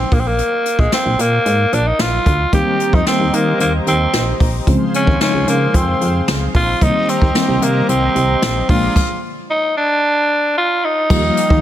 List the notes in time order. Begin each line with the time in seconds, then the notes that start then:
Already playing: C4
0.12 A#1 A#3, kick, open hi-hat
0.20 C4
0.27 A#3
0.39 closed hi-hat
0.66 closed hi-hat
0.79 A#1 G#3, kick
0.92 C4, snare, closed hi-hat
1.06 A#1
1.19 A#2 A#3, closed hi-hat
1.46 G#2, closed hi-hat
1.72 A#1 D4, closed hi-hat
1.87 D#4
1.99 A#1 F4, snare, closed hi-hat
2.26 D2, kick, closed hi-hat
2.52 D#2 D#3 G3 A#3 C4 G4 C5 D#5 A#5, kick, closed hi-hat
2.80 closed hi-hat
2.93 F2 D#4, kick
3.06 D#3 G3 A#3 C4, snare, closed hi-hat
3.20 D#2
3.33 D#3 A#3, closed hi-hat
3.60 D#2 A#3, closed hi-hat
3.87 D#2 C4, closed hi-hat
4.13 A#1, snare, closed hi-hat
4.40 A#1, kick, open hi-hat
4.67 C#2 C#3 F3 G#3 C4 G#4 C5 F5 C6, kick, closed hi-hat
4.94 C#4, closed hi-hat
5.07 D#2, kick
5.20 C#3 F3 G#3 C#4 D#4, snare, closed hi-hat
5.34 C#2
5.48 C#3 A#3, closed hi-hat
5.74 F2 C4, kick, closed hi-hat
6.01 F2, closed hi-hat
6.28 C#2, snare, closed hi-hat
6.54 A#1 F4, kick, open hi-hat
6.81 C2 D#3 G3 A#3 C4 D#4 G4 C5 D#5 A#5, kick, closed hi-hat
7.08 C4, closed hi-hat
7.22 D#2, kick
7.35 D#3 G3 A#3 C4, snare, closed hi-hat
7.48 C2
7.62 C3 A#3, closed hi-hat
7.89 C2 C4, closed hi-hat
8.15 C2, closed hi-hat
8.42 A#1, snare, closed hi-hat
8.69 A#1 F3 G#3 A#3 D4 F4 G#4 D5 F5, kick, open hi-hat
8.96 kick, crash
9.50 D#4
9.77 D4
10.58 F4
10.85 D#4
11.10 D#2 D#3 F3 G3 A#3 D#4 F4 G4 D#5 F5 A#5, kick, crash
11.37 closed hi-hat
11.50 D#3, kick